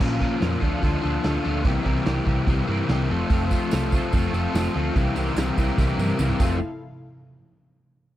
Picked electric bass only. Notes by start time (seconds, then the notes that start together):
0.00 A#1
0.42 F2
0.62 D2
0.83 D2
1.04 D2
1.25 D2
1.46 D2
1.64 C2
1.85 C2
2.06 C2
2.26 C2
2.47 C2
2.69 G2
2.89 C2
3.10 F1
3.30 F1
3.73 C2
4.13 F1
4.33 F1
4.54 F1
4.76 D2
4.96 C2
5.16 C2
5.36 C2
5.58 C2
5.78 C2
5.98 G2
6.19 C2
6.40 F1